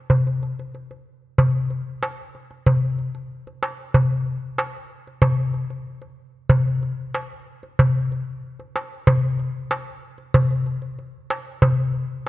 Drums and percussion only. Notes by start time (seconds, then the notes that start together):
0.10 darbuka dum
0.27 darbuka ka
0.43 darbuka ka
0.59 darbuka ka
0.75 darbuka ka
0.91 darbuka ka
1.38 darbuka dum
1.70 darbuka ka
2.03 darbuka tek
2.35 darbuka ka
2.51 darbuka ka
2.66 darbuka dum
2.99 darbuka ka
3.15 darbuka ka
3.47 darbuka ka
3.63 darbuka tek
3.94 darbuka dum
4.58 darbuka tek
5.07 darbuka ka
5.22 darbuka dum
5.54 darbuka ka
5.70 darbuka ka
6.02 darbuka ka
6.49 darbuka dum
6.83 darbuka ka
7.15 darbuka tek
7.63 darbuka ka
7.79 darbuka dum
8.12 darbuka ka
8.60 darbuka ka
8.76 darbuka tek
9.07 darbuka dum
9.39 darbuka ka
9.71 darbuka tek
10.18 darbuka ka
10.34 darbuka dum
10.51 darbuka ka
10.66 darbuka ka
10.82 darbuka ka
10.99 darbuka ka
11.30 darbuka tek
11.62 darbuka dum